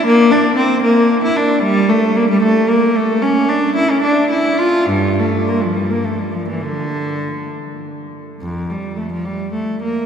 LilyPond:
\new Staff \with { instrumentName = "Cello" } { \time 6/8 \key bes \lydian \tempo 4. = 72 bes8 d'8 c'8 bes8. e'16 d'8 | \key d \minor g8 a8 bes16 g16 a8 bes8 a8 | cis'8 d'8 e'16 cis'16 d'8 e'8 f'8 | g,8 a8 bes16 f16 g16 bes16 a16 g16 f16 e16 |
d4. r4. | \key g \dorian f,8 g8 a16 f16 g8 a8 bes8 | }